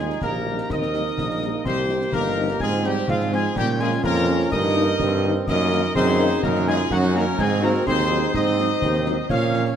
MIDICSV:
0, 0, Header, 1, 9, 480
1, 0, Start_track
1, 0, Tempo, 477707
1, 701, Time_signature, 2, 2, 24, 8
1, 9808, End_track
2, 0, Start_track
2, 0, Title_t, "Piccolo"
2, 0, Program_c, 0, 72
2, 228, Note_on_c, 0, 82, 107
2, 710, Note_on_c, 0, 87, 113
2, 725, Note_off_c, 0, 82, 0
2, 1647, Note_off_c, 0, 87, 0
2, 1653, Note_on_c, 0, 84, 97
2, 2139, Note_on_c, 0, 82, 116
2, 2154, Note_off_c, 0, 84, 0
2, 2606, Note_off_c, 0, 82, 0
2, 2612, Note_on_c, 0, 80, 106
2, 2672, Note_off_c, 0, 80, 0
2, 2858, Note_on_c, 0, 79, 104
2, 2919, Note_off_c, 0, 79, 0
2, 3109, Note_on_c, 0, 77, 107
2, 3170, Note_off_c, 0, 77, 0
2, 3355, Note_on_c, 0, 80, 105
2, 3572, Note_off_c, 0, 80, 0
2, 3587, Note_on_c, 0, 79, 110
2, 3822, Note_on_c, 0, 80, 110
2, 3837, Note_off_c, 0, 79, 0
2, 4059, Note_off_c, 0, 80, 0
2, 4065, Note_on_c, 0, 82, 127
2, 4509, Note_off_c, 0, 82, 0
2, 4533, Note_on_c, 0, 87, 127
2, 5176, Note_off_c, 0, 87, 0
2, 5492, Note_on_c, 0, 87, 125
2, 5942, Note_off_c, 0, 87, 0
2, 5972, Note_on_c, 0, 84, 127
2, 6422, Note_off_c, 0, 84, 0
2, 6453, Note_on_c, 0, 82, 97
2, 6513, Note_off_c, 0, 82, 0
2, 6702, Note_on_c, 0, 80, 117
2, 6762, Note_off_c, 0, 80, 0
2, 6944, Note_on_c, 0, 78, 127
2, 7004, Note_off_c, 0, 78, 0
2, 7183, Note_on_c, 0, 82, 117
2, 7243, Note_off_c, 0, 82, 0
2, 7429, Note_on_c, 0, 80, 111
2, 7648, Note_off_c, 0, 80, 0
2, 7665, Note_on_c, 0, 82, 112
2, 7725, Note_off_c, 0, 82, 0
2, 7906, Note_on_c, 0, 84, 127
2, 8349, Note_off_c, 0, 84, 0
2, 8389, Note_on_c, 0, 87, 123
2, 9304, Note_off_c, 0, 87, 0
2, 9355, Note_on_c, 0, 89, 114
2, 9795, Note_off_c, 0, 89, 0
2, 9808, End_track
3, 0, Start_track
3, 0, Title_t, "Trumpet section"
3, 0, Program_c, 1, 61
3, 0, Note_on_c, 1, 68, 100
3, 196, Note_off_c, 1, 68, 0
3, 216, Note_on_c, 1, 70, 108
3, 665, Note_off_c, 1, 70, 0
3, 709, Note_on_c, 1, 75, 110
3, 1625, Note_off_c, 1, 75, 0
3, 1662, Note_on_c, 1, 72, 117
3, 2108, Note_off_c, 1, 72, 0
3, 2145, Note_on_c, 1, 70, 119
3, 2590, Note_off_c, 1, 70, 0
3, 2625, Note_on_c, 1, 68, 125
3, 2846, Note_off_c, 1, 68, 0
3, 2865, Note_on_c, 1, 67, 122
3, 3102, Note_on_c, 1, 65, 115
3, 3103, Note_off_c, 1, 67, 0
3, 3341, Note_off_c, 1, 65, 0
3, 3354, Note_on_c, 1, 68, 122
3, 3586, Note_on_c, 1, 67, 127
3, 3587, Note_off_c, 1, 68, 0
3, 3692, Note_off_c, 1, 67, 0
3, 3829, Note_on_c, 1, 68, 127
3, 3935, Note_off_c, 1, 68, 0
3, 4059, Note_on_c, 1, 70, 127
3, 4506, Note_off_c, 1, 70, 0
3, 4537, Note_on_c, 1, 75, 127
3, 5458, Note_off_c, 1, 75, 0
3, 5495, Note_on_c, 1, 75, 127
3, 5944, Note_off_c, 1, 75, 0
3, 5979, Note_on_c, 1, 72, 127
3, 6426, Note_off_c, 1, 72, 0
3, 6465, Note_on_c, 1, 70, 125
3, 6702, Note_off_c, 1, 70, 0
3, 6715, Note_on_c, 1, 68, 127
3, 6931, Note_off_c, 1, 68, 0
3, 6957, Note_on_c, 1, 66, 127
3, 7188, Note_off_c, 1, 66, 0
3, 7195, Note_on_c, 1, 70, 127
3, 7427, Note_on_c, 1, 68, 127
3, 7428, Note_off_c, 1, 70, 0
3, 7664, Note_off_c, 1, 68, 0
3, 7667, Note_on_c, 1, 70, 127
3, 7903, Note_off_c, 1, 70, 0
3, 7904, Note_on_c, 1, 72, 127
3, 8349, Note_off_c, 1, 72, 0
3, 8381, Note_on_c, 1, 75, 127
3, 9300, Note_off_c, 1, 75, 0
3, 9346, Note_on_c, 1, 77, 119
3, 9682, Note_off_c, 1, 77, 0
3, 9808, End_track
4, 0, Start_track
4, 0, Title_t, "Woodwind section"
4, 0, Program_c, 2, 71
4, 0, Note_on_c, 2, 65, 86
4, 209, Note_off_c, 2, 65, 0
4, 231, Note_on_c, 2, 67, 91
4, 673, Note_off_c, 2, 67, 0
4, 709, Note_on_c, 2, 70, 106
4, 1625, Note_off_c, 2, 70, 0
4, 1661, Note_on_c, 2, 67, 109
4, 2107, Note_off_c, 2, 67, 0
4, 2140, Note_on_c, 2, 67, 112
4, 2587, Note_off_c, 2, 67, 0
4, 2626, Note_on_c, 2, 65, 109
4, 2863, Note_off_c, 2, 65, 0
4, 2865, Note_on_c, 2, 63, 96
4, 2972, Note_off_c, 2, 63, 0
4, 3089, Note_on_c, 2, 60, 99
4, 3317, Note_off_c, 2, 60, 0
4, 3336, Note_on_c, 2, 65, 114
4, 3561, Note_off_c, 2, 65, 0
4, 3572, Note_on_c, 2, 63, 112
4, 3807, Note_on_c, 2, 65, 120
4, 3816, Note_off_c, 2, 63, 0
4, 4026, Note_off_c, 2, 65, 0
4, 4038, Note_on_c, 2, 65, 124
4, 4495, Note_off_c, 2, 65, 0
4, 4520, Note_on_c, 2, 70, 127
4, 5450, Note_off_c, 2, 70, 0
4, 5497, Note_on_c, 2, 70, 127
4, 5945, Note_off_c, 2, 70, 0
4, 5979, Note_on_c, 2, 68, 127
4, 6426, Note_off_c, 2, 68, 0
4, 6459, Note_on_c, 2, 66, 115
4, 6695, Note_on_c, 2, 65, 120
4, 6700, Note_off_c, 2, 66, 0
4, 6937, Note_off_c, 2, 65, 0
4, 6938, Note_on_c, 2, 63, 122
4, 7162, Note_off_c, 2, 63, 0
4, 7171, Note_on_c, 2, 66, 127
4, 7281, Note_off_c, 2, 66, 0
4, 7409, Note_on_c, 2, 63, 122
4, 7637, Note_off_c, 2, 63, 0
4, 7648, Note_on_c, 2, 66, 120
4, 7877, Note_off_c, 2, 66, 0
4, 7888, Note_on_c, 2, 68, 127
4, 8368, Note_on_c, 2, 72, 127
4, 8374, Note_off_c, 2, 68, 0
4, 9294, Note_off_c, 2, 72, 0
4, 9333, Note_on_c, 2, 73, 125
4, 9783, Note_off_c, 2, 73, 0
4, 9808, End_track
5, 0, Start_track
5, 0, Title_t, "Trombone section"
5, 0, Program_c, 3, 61
5, 0, Note_on_c, 3, 63, 102
5, 664, Note_off_c, 3, 63, 0
5, 708, Note_on_c, 3, 60, 96
5, 1151, Note_off_c, 3, 60, 0
5, 1184, Note_on_c, 3, 58, 78
5, 2143, Note_off_c, 3, 58, 0
5, 2146, Note_on_c, 3, 63, 99
5, 2590, Note_off_c, 3, 63, 0
5, 2640, Note_on_c, 3, 60, 105
5, 3550, Note_off_c, 3, 60, 0
5, 3600, Note_on_c, 3, 61, 109
5, 4510, Note_off_c, 3, 61, 0
5, 4545, Note_on_c, 3, 63, 121
5, 5022, Note_off_c, 3, 63, 0
5, 5033, Note_on_c, 3, 60, 117
5, 5506, Note_off_c, 3, 60, 0
5, 5531, Note_on_c, 3, 58, 97
5, 5846, Note_off_c, 3, 58, 0
5, 5985, Note_on_c, 3, 63, 120
5, 6429, Note_off_c, 3, 63, 0
5, 6470, Note_on_c, 3, 63, 122
5, 6912, Note_off_c, 3, 63, 0
5, 6962, Note_on_c, 3, 61, 124
5, 7431, Note_off_c, 3, 61, 0
5, 7447, Note_on_c, 3, 60, 121
5, 7907, Note_on_c, 3, 63, 113
5, 7914, Note_off_c, 3, 60, 0
5, 8350, Note_off_c, 3, 63, 0
5, 8380, Note_on_c, 3, 60, 111
5, 8826, Note_off_c, 3, 60, 0
5, 8866, Note_on_c, 3, 60, 102
5, 9310, Note_off_c, 3, 60, 0
5, 9341, Note_on_c, 3, 61, 111
5, 9787, Note_off_c, 3, 61, 0
5, 9808, End_track
6, 0, Start_track
6, 0, Title_t, "Euphonium"
6, 0, Program_c, 4, 58
6, 0, Note_on_c, 4, 56, 84
6, 217, Note_off_c, 4, 56, 0
6, 223, Note_on_c, 4, 58, 99
6, 702, Note_on_c, 4, 63, 109
6, 718, Note_off_c, 4, 58, 0
6, 1657, Note_on_c, 4, 60, 114
6, 1672, Note_off_c, 4, 63, 0
6, 2136, Note_off_c, 4, 60, 0
6, 2142, Note_on_c, 4, 58, 107
6, 2588, Note_off_c, 4, 58, 0
6, 2634, Note_on_c, 4, 56, 105
6, 2851, Note_off_c, 4, 56, 0
6, 2870, Note_on_c, 4, 55, 107
6, 3089, Note_off_c, 4, 55, 0
6, 3103, Note_on_c, 4, 53, 104
6, 3325, Note_off_c, 4, 53, 0
6, 3345, Note_on_c, 4, 56, 102
6, 3452, Note_off_c, 4, 56, 0
6, 3567, Note_on_c, 4, 55, 104
6, 3797, Note_off_c, 4, 55, 0
6, 3809, Note_on_c, 4, 56, 108
6, 4037, Note_off_c, 4, 56, 0
6, 4047, Note_on_c, 4, 58, 123
6, 4500, Note_off_c, 4, 58, 0
6, 4526, Note_on_c, 4, 63, 127
6, 5173, Note_off_c, 4, 63, 0
6, 5496, Note_on_c, 4, 63, 120
6, 5944, Note_off_c, 4, 63, 0
6, 5979, Note_on_c, 4, 60, 127
6, 6465, Note_on_c, 4, 58, 108
6, 6480, Note_off_c, 4, 60, 0
6, 6701, Note_off_c, 4, 58, 0
6, 6707, Note_on_c, 4, 56, 125
6, 6813, Note_off_c, 4, 56, 0
6, 6949, Note_on_c, 4, 54, 117
6, 7168, Note_off_c, 4, 54, 0
6, 7178, Note_on_c, 4, 58, 123
6, 7287, Note_off_c, 4, 58, 0
6, 7415, Note_on_c, 4, 56, 116
6, 7524, Note_off_c, 4, 56, 0
6, 7659, Note_on_c, 4, 58, 112
6, 7767, Note_off_c, 4, 58, 0
6, 7905, Note_on_c, 4, 60, 122
6, 8349, Note_off_c, 4, 60, 0
6, 8381, Note_on_c, 4, 63, 127
6, 9300, Note_off_c, 4, 63, 0
6, 9338, Note_on_c, 4, 65, 117
6, 9786, Note_off_c, 4, 65, 0
6, 9808, End_track
7, 0, Start_track
7, 0, Title_t, "French horn section"
7, 0, Program_c, 5, 60
7, 466, Note_on_c, 5, 63, 73
7, 467, Note_on_c, 5, 58, 66
7, 470, Note_on_c, 5, 55, 70
7, 551, Note_off_c, 5, 63, 0
7, 552, Note_off_c, 5, 58, 0
7, 554, Note_off_c, 5, 55, 0
7, 945, Note_on_c, 5, 63, 72
7, 946, Note_on_c, 5, 58, 68
7, 947, Note_on_c, 5, 55, 75
7, 1031, Note_off_c, 5, 58, 0
7, 1031, Note_off_c, 5, 63, 0
7, 1032, Note_off_c, 5, 55, 0
7, 1430, Note_on_c, 5, 55, 77
7, 1430, Note_on_c, 5, 63, 76
7, 1431, Note_on_c, 5, 58, 73
7, 1514, Note_off_c, 5, 63, 0
7, 1515, Note_off_c, 5, 55, 0
7, 1515, Note_off_c, 5, 58, 0
7, 1909, Note_on_c, 5, 63, 81
7, 1911, Note_on_c, 5, 60, 72
7, 1913, Note_on_c, 5, 55, 76
7, 1994, Note_off_c, 5, 63, 0
7, 1995, Note_off_c, 5, 60, 0
7, 1997, Note_off_c, 5, 55, 0
7, 2384, Note_on_c, 5, 55, 87
7, 2384, Note_on_c, 5, 60, 81
7, 2388, Note_on_c, 5, 63, 87
7, 2470, Note_off_c, 5, 55, 0
7, 2470, Note_off_c, 5, 60, 0
7, 2473, Note_off_c, 5, 63, 0
7, 2867, Note_on_c, 5, 53, 83
7, 2867, Note_on_c, 5, 60, 78
7, 2868, Note_off_c, 5, 60, 0
7, 2868, Note_on_c, 5, 60, 80
7, 2952, Note_off_c, 5, 53, 0
7, 2953, Note_off_c, 5, 60, 0
7, 3344, Note_on_c, 5, 60, 85
7, 3345, Note_off_c, 5, 60, 0
7, 3345, Note_on_c, 5, 60, 84
7, 3346, Note_on_c, 5, 53, 86
7, 3430, Note_off_c, 5, 60, 0
7, 3431, Note_off_c, 5, 53, 0
7, 3821, Note_on_c, 5, 61, 87
7, 3822, Note_on_c, 5, 53, 81
7, 3825, Note_on_c, 5, 58, 86
7, 3907, Note_off_c, 5, 61, 0
7, 3908, Note_off_c, 5, 53, 0
7, 3911, Note_off_c, 5, 58, 0
7, 4302, Note_on_c, 5, 53, 93
7, 4305, Note_on_c, 5, 61, 92
7, 4306, Note_on_c, 5, 58, 84
7, 4388, Note_off_c, 5, 53, 0
7, 4390, Note_off_c, 5, 61, 0
7, 4391, Note_off_c, 5, 58, 0
7, 4776, Note_on_c, 5, 58, 89
7, 4777, Note_on_c, 5, 51, 90
7, 4778, Note_on_c, 5, 63, 92
7, 4863, Note_off_c, 5, 58, 0
7, 4864, Note_off_c, 5, 51, 0
7, 4865, Note_off_c, 5, 63, 0
7, 5259, Note_on_c, 5, 51, 96
7, 5260, Note_on_c, 5, 58, 86
7, 5262, Note_on_c, 5, 63, 98
7, 5346, Note_off_c, 5, 51, 0
7, 5347, Note_off_c, 5, 58, 0
7, 5348, Note_off_c, 5, 63, 0
7, 5743, Note_on_c, 5, 51, 88
7, 5745, Note_on_c, 5, 58, 92
7, 5746, Note_on_c, 5, 63, 87
7, 5829, Note_off_c, 5, 51, 0
7, 5830, Note_off_c, 5, 58, 0
7, 5831, Note_off_c, 5, 63, 0
7, 6224, Note_on_c, 5, 58, 95
7, 6226, Note_on_c, 5, 51, 97
7, 6228, Note_on_c, 5, 63, 98
7, 6310, Note_off_c, 5, 58, 0
7, 6311, Note_off_c, 5, 51, 0
7, 6313, Note_off_c, 5, 63, 0
7, 6702, Note_on_c, 5, 63, 98
7, 6703, Note_on_c, 5, 51, 92
7, 6708, Note_on_c, 5, 58, 91
7, 6788, Note_off_c, 5, 63, 0
7, 6789, Note_off_c, 5, 51, 0
7, 6792, Note_off_c, 5, 58, 0
7, 7187, Note_on_c, 5, 51, 91
7, 7187, Note_on_c, 5, 58, 98
7, 7187, Note_on_c, 5, 63, 93
7, 7272, Note_off_c, 5, 51, 0
7, 7272, Note_off_c, 5, 58, 0
7, 7272, Note_off_c, 5, 63, 0
7, 7665, Note_on_c, 5, 54, 85
7, 7665, Note_on_c, 5, 60, 90
7, 7667, Note_on_c, 5, 63, 86
7, 7750, Note_off_c, 5, 60, 0
7, 7751, Note_off_c, 5, 54, 0
7, 7752, Note_off_c, 5, 63, 0
7, 8142, Note_on_c, 5, 60, 91
7, 8144, Note_on_c, 5, 63, 87
7, 8146, Note_on_c, 5, 54, 98
7, 8228, Note_off_c, 5, 60, 0
7, 8230, Note_off_c, 5, 63, 0
7, 8231, Note_off_c, 5, 54, 0
7, 8625, Note_on_c, 5, 63, 84
7, 8628, Note_on_c, 5, 54, 84
7, 8628, Note_on_c, 5, 60, 83
7, 8710, Note_off_c, 5, 63, 0
7, 8712, Note_off_c, 5, 60, 0
7, 8713, Note_off_c, 5, 54, 0
7, 9103, Note_on_c, 5, 60, 79
7, 9105, Note_on_c, 5, 54, 93
7, 9105, Note_on_c, 5, 63, 94
7, 9189, Note_off_c, 5, 60, 0
7, 9190, Note_off_c, 5, 54, 0
7, 9190, Note_off_c, 5, 63, 0
7, 9578, Note_on_c, 5, 53, 72
7, 9579, Note_on_c, 5, 58, 77
7, 9580, Note_on_c, 5, 61, 76
7, 9665, Note_off_c, 5, 53, 0
7, 9666, Note_off_c, 5, 58, 0
7, 9667, Note_off_c, 5, 61, 0
7, 9808, End_track
8, 0, Start_track
8, 0, Title_t, "Tuba"
8, 0, Program_c, 6, 58
8, 0, Note_on_c, 6, 39, 90
8, 141, Note_off_c, 6, 39, 0
8, 218, Note_on_c, 6, 34, 93
8, 619, Note_off_c, 6, 34, 0
8, 703, Note_on_c, 6, 39, 89
8, 1102, Note_off_c, 6, 39, 0
8, 1180, Note_on_c, 6, 34, 95
8, 1580, Note_off_c, 6, 34, 0
8, 1657, Note_on_c, 6, 36, 98
8, 2059, Note_off_c, 6, 36, 0
8, 2141, Note_on_c, 6, 31, 102
8, 2541, Note_off_c, 6, 31, 0
8, 2620, Note_on_c, 6, 44, 104
8, 3020, Note_off_c, 6, 44, 0
8, 3100, Note_on_c, 6, 44, 104
8, 3500, Note_off_c, 6, 44, 0
8, 3578, Note_on_c, 6, 46, 107
8, 3979, Note_off_c, 6, 46, 0
8, 4062, Note_on_c, 6, 41, 121
8, 4461, Note_off_c, 6, 41, 0
8, 4545, Note_on_c, 6, 43, 115
8, 4943, Note_off_c, 6, 43, 0
8, 5022, Note_on_c, 6, 43, 126
8, 5421, Note_off_c, 6, 43, 0
8, 5502, Note_on_c, 6, 42, 122
8, 5901, Note_off_c, 6, 42, 0
8, 5983, Note_on_c, 6, 42, 124
8, 6381, Note_off_c, 6, 42, 0
8, 6465, Note_on_c, 6, 42, 121
8, 6862, Note_off_c, 6, 42, 0
8, 6940, Note_on_c, 6, 42, 122
8, 7340, Note_off_c, 6, 42, 0
8, 7423, Note_on_c, 6, 44, 122
8, 7821, Note_off_c, 6, 44, 0
8, 7907, Note_on_c, 6, 39, 115
8, 8303, Note_off_c, 6, 39, 0
8, 8382, Note_on_c, 6, 44, 109
8, 8781, Note_off_c, 6, 44, 0
8, 8863, Note_on_c, 6, 39, 113
8, 9261, Note_off_c, 6, 39, 0
8, 9343, Note_on_c, 6, 46, 115
8, 9741, Note_off_c, 6, 46, 0
8, 9808, End_track
9, 0, Start_track
9, 0, Title_t, "Drums"
9, 100, Note_on_c, 9, 38, 57
9, 200, Note_off_c, 9, 38, 0
9, 215, Note_on_c, 9, 35, 80
9, 215, Note_on_c, 9, 38, 74
9, 316, Note_off_c, 9, 35, 0
9, 316, Note_off_c, 9, 38, 0
9, 581, Note_on_c, 9, 38, 65
9, 682, Note_off_c, 9, 38, 0
9, 704, Note_on_c, 9, 35, 86
9, 704, Note_on_c, 9, 38, 79
9, 804, Note_off_c, 9, 35, 0
9, 804, Note_off_c, 9, 38, 0
9, 824, Note_on_c, 9, 38, 61
9, 925, Note_off_c, 9, 38, 0
9, 943, Note_on_c, 9, 38, 65
9, 1043, Note_off_c, 9, 38, 0
9, 1183, Note_on_c, 9, 35, 80
9, 1183, Note_on_c, 9, 38, 78
9, 1284, Note_off_c, 9, 35, 0
9, 1284, Note_off_c, 9, 38, 0
9, 1307, Note_on_c, 9, 38, 55
9, 1407, Note_off_c, 9, 38, 0
9, 1424, Note_on_c, 9, 38, 54
9, 1525, Note_off_c, 9, 38, 0
9, 1663, Note_on_c, 9, 35, 81
9, 1663, Note_on_c, 9, 38, 77
9, 1663, Note_on_c, 9, 49, 32
9, 1763, Note_off_c, 9, 35, 0
9, 1763, Note_off_c, 9, 38, 0
9, 1763, Note_off_c, 9, 49, 0
9, 1900, Note_on_c, 9, 38, 60
9, 2000, Note_off_c, 9, 38, 0
9, 2023, Note_on_c, 9, 38, 56
9, 2123, Note_off_c, 9, 38, 0
9, 2137, Note_on_c, 9, 35, 77
9, 2137, Note_on_c, 9, 38, 77
9, 2238, Note_off_c, 9, 35, 0
9, 2238, Note_off_c, 9, 38, 0
9, 2496, Note_on_c, 9, 38, 63
9, 2597, Note_off_c, 9, 38, 0
9, 2613, Note_on_c, 9, 35, 82
9, 2613, Note_on_c, 9, 38, 75
9, 2714, Note_off_c, 9, 35, 0
9, 2714, Note_off_c, 9, 38, 0
9, 2730, Note_on_c, 9, 38, 59
9, 2831, Note_off_c, 9, 38, 0
9, 2852, Note_on_c, 9, 38, 66
9, 2952, Note_off_c, 9, 38, 0
9, 3094, Note_on_c, 9, 35, 80
9, 3094, Note_on_c, 9, 38, 76
9, 3194, Note_off_c, 9, 35, 0
9, 3194, Note_off_c, 9, 38, 0
9, 3217, Note_on_c, 9, 38, 59
9, 3317, Note_off_c, 9, 38, 0
9, 3340, Note_on_c, 9, 38, 61
9, 3440, Note_off_c, 9, 38, 0
9, 3578, Note_on_c, 9, 35, 86
9, 3578, Note_on_c, 9, 38, 79
9, 3578, Note_on_c, 9, 49, 34
9, 3679, Note_off_c, 9, 35, 0
9, 3679, Note_off_c, 9, 38, 0
9, 3679, Note_off_c, 9, 49, 0
9, 3812, Note_on_c, 9, 38, 65
9, 3912, Note_off_c, 9, 38, 0
9, 3937, Note_on_c, 9, 38, 58
9, 4038, Note_off_c, 9, 38, 0
9, 4057, Note_on_c, 9, 35, 80
9, 4057, Note_on_c, 9, 38, 85
9, 4158, Note_off_c, 9, 35, 0
9, 4158, Note_off_c, 9, 38, 0
9, 4420, Note_on_c, 9, 38, 68
9, 4521, Note_off_c, 9, 38, 0
9, 4541, Note_on_c, 9, 35, 90
9, 4541, Note_on_c, 9, 38, 64
9, 4641, Note_off_c, 9, 35, 0
9, 4641, Note_off_c, 9, 38, 0
9, 5019, Note_on_c, 9, 35, 76
9, 5019, Note_on_c, 9, 38, 82
9, 5119, Note_off_c, 9, 35, 0
9, 5119, Note_off_c, 9, 38, 0
9, 5503, Note_on_c, 9, 35, 87
9, 5503, Note_on_c, 9, 38, 84
9, 5503, Note_on_c, 9, 49, 59
9, 5604, Note_off_c, 9, 35, 0
9, 5604, Note_off_c, 9, 38, 0
9, 5604, Note_off_c, 9, 49, 0
9, 5743, Note_on_c, 9, 38, 68
9, 5844, Note_off_c, 9, 38, 0
9, 5863, Note_on_c, 9, 38, 65
9, 5964, Note_off_c, 9, 38, 0
9, 5984, Note_on_c, 9, 35, 84
9, 5984, Note_on_c, 9, 38, 85
9, 6084, Note_off_c, 9, 35, 0
9, 6084, Note_off_c, 9, 38, 0
9, 6342, Note_on_c, 9, 38, 65
9, 6442, Note_off_c, 9, 38, 0
9, 6464, Note_on_c, 9, 35, 90
9, 6464, Note_on_c, 9, 38, 81
9, 6564, Note_off_c, 9, 35, 0
9, 6564, Note_off_c, 9, 38, 0
9, 6584, Note_on_c, 9, 38, 64
9, 6685, Note_off_c, 9, 38, 0
9, 6704, Note_on_c, 9, 38, 67
9, 6805, Note_off_c, 9, 38, 0
9, 6938, Note_on_c, 9, 35, 83
9, 6938, Note_on_c, 9, 38, 76
9, 7038, Note_off_c, 9, 35, 0
9, 7038, Note_off_c, 9, 38, 0
9, 7061, Note_on_c, 9, 38, 58
9, 7162, Note_off_c, 9, 38, 0
9, 7184, Note_on_c, 9, 38, 57
9, 7285, Note_off_c, 9, 38, 0
9, 7420, Note_on_c, 9, 35, 80
9, 7420, Note_on_c, 9, 38, 77
9, 7420, Note_on_c, 9, 49, 33
9, 7521, Note_off_c, 9, 35, 0
9, 7521, Note_off_c, 9, 38, 0
9, 7521, Note_off_c, 9, 49, 0
9, 7661, Note_on_c, 9, 38, 68
9, 7762, Note_off_c, 9, 38, 0
9, 7781, Note_on_c, 9, 38, 55
9, 7882, Note_off_c, 9, 38, 0
9, 7906, Note_on_c, 9, 35, 85
9, 7906, Note_on_c, 9, 38, 81
9, 8007, Note_off_c, 9, 35, 0
9, 8007, Note_off_c, 9, 38, 0
9, 8261, Note_on_c, 9, 38, 61
9, 8362, Note_off_c, 9, 38, 0
9, 8382, Note_on_c, 9, 35, 86
9, 8382, Note_on_c, 9, 38, 78
9, 8483, Note_off_c, 9, 35, 0
9, 8483, Note_off_c, 9, 38, 0
9, 8504, Note_on_c, 9, 38, 63
9, 8604, Note_off_c, 9, 38, 0
9, 8623, Note_on_c, 9, 38, 69
9, 8724, Note_off_c, 9, 38, 0
9, 8863, Note_on_c, 9, 35, 81
9, 8863, Note_on_c, 9, 38, 84
9, 8963, Note_off_c, 9, 35, 0
9, 8963, Note_off_c, 9, 38, 0
9, 8981, Note_on_c, 9, 38, 59
9, 9081, Note_off_c, 9, 38, 0
9, 9100, Note_on_c, 9, 38, 63
9, 9201, Note_off_c, 9, 38, 0
9, 9341, Note_on_c, 9, 35, 83
9, 9341, Note_on_c, 9, 38, 80
9, 9341, Note_on_c, 9, 49, 33
9, 9442, Note_off_c, 9, 35, 0
9, 9442, Note_off_c, 9, 38, 0
9, 9442, Note_off_c, 9, 49, 0
9, 9579, Note_on_c, 9, 38, 64
9, 9680, Note_off_c, 9, 38, 0
9, 9695, Note_on_c, 9, 38, 59
9, 9795, Note_off_c, 9, 38, 0
9, 9808, End_track
0, 0, End_of_file